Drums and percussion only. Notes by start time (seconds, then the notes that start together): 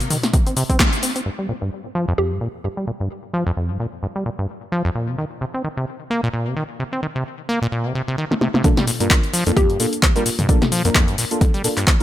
0.00 closed hi-hat, cabasa
0.10 open hi-hat, mid tom, cabasa
0.23 snare, closed hi-hat, cabasa
0.34 kick, closed hi-hat, cabasa
0.47 closed hi-hat, cabasa
0.57 open hi-hat, cabasa
0.70 kick, closed hi-hat, cabasa
0.80 kick, snare, clap, closed hi-hat, cabasa
0.93 closed hi-hat, cabasa
1.03 open hi-hat, cabasa
1.16 closed hi-hat, cabasa
1.72 closed hi-hat
1.85 closed hi-hat
2.41 closed hi-hat
2.54 closed hi-hat
2.77 closed hi-hat
2.87 closed hi-hat, cabasa
3.00 closed hi-hat
3.10 closed hi-hat
3.23 closed hi-hat
3.80 closed hi-hat
3.93 closed hi-hat
4.03 closed hi-hat
4.16 closed hi-hat
4.26 closed hi-hat, cabasa
4.39 closed hi-hat
4.49 closed hi-hat, cabasa
4.62 closed hi-hat, cabasa
5.08 closed hi-hat
5.18 closed hi-hat, cabasa
5.31 closed hi-hat, cabasa
5.41 closed hi-hat, cabasa
5.54 closed hi-hat
5.64 closed hi-hat, cabasa
5.87 closed hi-hat, cabasa
6.00 closed hi-hat
6.10 closed hi-hat
6.47 closed hi-hat
6.57 closed hi-hat
6.70 closed hi-hat, cabasa
6.80 closed hi-hat
7.03 closed hi-hat
7.26 closed hi-hat, cabasa
7.39 closed hi-hat
7.72 closed hi-hat
7.85 closed hi-hat
7.95 closed hi-hat
8.31 snare
8.41 snare
8.54 snare
8.64 kick, closed hi-hat, mid tom, cabasa
8.77 snare, closed hi-hat, mid tom
8.87 open hi-hat, cabasa
9.00 closed hi-hat, cabasa
9.10 kick, clap, closed hi-hat, cabasa
9.23 closed hi-hat
9.34 open hi-hat, cabasa
9.47 closed hi-hat, cabasa
9.57 kick, closed hi-hat, cabasa
9.70 closed hi-hat
9.80 open hi-hat, cabasa
9.93 closed hi-hat, cabasa
10.03 kick, clap, closed hi-hat, cabasa
10.16 closed hi-hat, cabasa
10.26 open hi-hat, cabasa
10.39 closed hi-hat, mid tom, cabasa
10.49 kick, closed hi-hat, cabasa
10.62 snare, closed hi-hat, mid tom
10.72 open hi-hat, cabasa
10.85 closed hi-hat, cabasa
10.95 kick, clap, closed hi-hat, cabasa
11.08 closed hi-hat
11.18 open hi-hat, cabasa
11.31 closed hi-hat, cabasa
11.41 kick, closed hi-hat, cabasa
11.54 closed hi-hat
11.64 open hi-hat, cabasa
11.77 clap, closed hi-hat, cabasa
11.87 kick, clap, closed hi-hat, cabasa